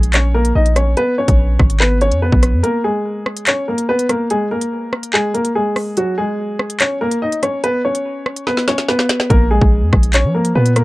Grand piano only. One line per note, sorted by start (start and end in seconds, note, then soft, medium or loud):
0.00 0.10 G#3 medium
0.14 0.31 C#4 medium
0.14 0.31 C#5 medium
0.34 0.52 A#3 medium
0.34 0.51 A#4 medium
0.55 0.73 D#4 medium
0.55 0.72 D#5 medium
0.76 0.93 C#4 medium
0.76 0.93 C#5 medium
0.97 1.14 B3 medium
0.97 1.14 B4 loud
1.18 1.77 C#4 medium
1.18 1.77 C#5 medium
1.80 1.98 B3 medium
1.80 1.97 B4 medium
2.02 2.19 C#4 medium
2.02 2.18 C#5 medium
2.22 2.62 B3 medium
2.22 2.61 B4 medium
2.63 2.81 A#3 medium
2.63 2.80 A#4 medium
2.84 3.43 G#3 medium
2.84 3.43 G#4 medium
3.48 3.65 C#4 medium
3.48 3.64 C#5 medium
3.68 3.85 A#3 medium
3.68 3.85 A#4 medium
3.89 4.06 B3 medium
3.89 4.06 B4 medium
4.09 4.27 A#3 medium
4.09 4.26 A#4 medium
4.31 4.48 G#3 medium
4.31 4.47 G#4 medium
4.51 5.10 A#3 medium
4.51 5.10 A#4 medium
5.13 5.31 G#3 medium
5.13 5.30 G#4 medium
5.34 5.51 A#3 medium
5.34 5.51 A#4 medium
5.55 5.95 G#3 medium
5.55 5.95 G#4 medium
5.97 6.14 F#3 medium
5.97 6.14 F#4 medium
6.18 6.77 G#3 medium
6.18 6.76 G#4 medium
6.81 6.98 C#4 medium
6.81 6.97 C#5 medium
7.01 7.18 A#3 medium
7.01 7.18 A#4 medium
7.22 7.39 D#4 medium
7.22 7.39 D#5 medium
7.43 7.60 C#4 medium
7.43 7.59 C#5 medium
7.64 7.81 B3 medium
7.64 7.80 B4 loud
7.85 8.44 C#4 medium
7.85 8.43 C#5 medium
8.47 8.64 B3 medium
8.47 8.64 B4 medium
8.68 8.85 C#4 medium
8.68 8.85 C#5 medium
8.89 9.28 B3 medium
8.89 9.28 B4 medium
9.30 9.47 A#3 medium
9.30 9.47 A#4 medium
9.51 10.10 G#3 medium
9.51 10.10 G#4 medium
10.14 10.31 C#4 medium
10.14 10.31 C#5 medium
10.35 10.52 A#3 medium
10.35 10.51 A#4 medium
10.55 10.73 B3 medium
10.55 10.72 B4 medium
10.76 10.84 A#3 medium
10.76 10.84 A#4 medium